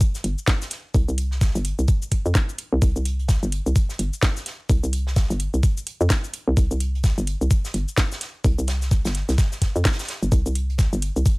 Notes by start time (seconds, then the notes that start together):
0.01 kick, closed hi-hat, cabasa
0.15 snare, cabasa
0.24 G1, closed hi-hat
0.38 cabasa
0.48 kick, snare, closed hi-hat, cabasa
0.61 snare, cabasa
0.70 snare, closed hi-hat
0.94 C2, kick, closed hi-hat, cabasa
1.08 C2, cabasa
1.18 closed hi-hat
1.31 snare
1.41 kick, snare, closed hi-hat, cabasa
1.55 G1, closed hi-hat, cabasa
1.65 closed hi-hat
1.79 C2, cabasa
1.88 kick, closed hi-hat, cabasa
2.02 cabasa
2.11 kick, closed hi-hat
2.26 F2, cabasa
2.35 kick, snare, cabasa
2.49 cabasa
2.58 closed hi-hat
2.73 C2
2.82 C2, kick, closed hi-hat, cabasa
2.96 C2, cabasa
3.05 closed hi-hat
3.19 closed hi-hat
3.28 kick, snare, closed hi-hat, cabasa
3.43 G1, cabasa
3.52 closed hi-hat
3.66 C2, cabasa
3.76 kick, closed hi-hat, cabasa
3.89 snare, cabasa
3.99 G1, closed hi-hat
4.13 cabasa
4.23 kick, snare, closed hi-hat, cabasa
4.37 snare, cabasa
4.46 snare, closed hi-hat
4.69 C2, kick, closed hi-hat, cabasa
4.84 C2, cabasa
4.93 closed hi-hat
5.07 snare
5.16 kick, snare, closed hi-hat, cabasa
5.30 G1, closed hi-hat, cabasa
5.39 closed hi-hat
5.54 C2, cabasa
5.63 kick, closed hi-hat, cabasa
5.77 cabasa
5.87 closed hi-hat
6.01 F2, cabasa
6.09 kick, snare, closed hi-hat, cabasa
6.24 closed hi-hat, cabasa
6.33 closed hi-hat
6.48 C2
6.57 C2, kick, closed hi-hat, cabasa
6.71 C2, cabasa
6.80 closed hi-hat
6.95 closed hi-hat
7.04 kick, snare, closed hi-hat, cabasa
7.18 G1, cabasa
7.27 closed hi-hat
7.41 C2, cabasa
7.51 kick, closed hi-hat, cabasa
7.65 snare, cabasa
7.74 G1, closed hi-hat
7.88 cabasa
7.97 kick, snare, closed hi-hat, cabasa
8.12 snare, cabasa
8.21 snare, closed hi-hat
8.44 C2, kick, closed hi-hat, cabasa
8.59 C2, cabasa
8.67 snare, closed hi-hat
8.82 snare, cabasa
8.91 kick, snare, closed hi-hat, cabasa
9.05 G1, snare, closed hi-hat, cabasa
9.15 snare, closed hi-hat
9.28 C2, snare, closed hi-hat, cabasa
9.38 kick, snare, closed hi-hat, cabasa
9.52 snare, cabasa
9.62 kick, snare, closed hi-hat
9.76 F2, cabasa
9.85 kick, snare, closed hi-hat, cabasa
9.92 snare, closed hi-hat
9.99 snare, closed hi-hat, cabasa
10.03 snare, closed hi-hat
10.09 snare, closed hi-hat
10.23 G1, cabasa
10.32 C2, kick, closed hi-hat, cabasa
10.46 C2, cabasa
10.55 closed hi-hat
10.70 closed hi-hat
10.78 kick, snare, closed hi-hat, cabasa
10.93 G1, cabasa
11.02 closed hi-hat
11.16 C2, cabasa
11.26 kick, closed hi-hat, cabasa